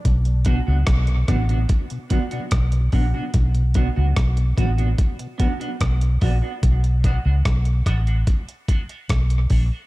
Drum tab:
HH |xxx-xxxxxxxxxxo-|xxx-xxxxxxxxxxo-|xxx-xxxxxxxxxxo-|
SD |----r-r-----r---|----r-------r---|----r-r-----r---|
BD |o-o-o-o-o-o-o-o-|o-o-o-o-o-o-o-o-|o-o-o-o-o-o-o-o-|